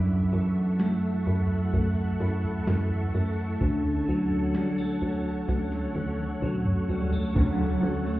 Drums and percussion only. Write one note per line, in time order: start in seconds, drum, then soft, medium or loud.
0.80 snare medium
1.27 floor tom medium
1.73 kick medium
1.73 floor tom medium
2.44 floor tom medium
2.67 snare medium
2.90 floor tom medium
3.61 kick medium
3.61 floor tom loud
4.31 floor tom medium
4.55 snare medium
5.02 floor tom medium
5.49 kick medium
5.49 snare soft
5.72 snare soft
5.96 high tom medium
6.19 high tom medium
6.42 mid tom medium
6.66 mid tom medium
6.89 floor tom medium
7.12 floor tom medium
7.36 kick loud
7.36 floor tom loud
7.36 crash loud
7.36 tambourine medium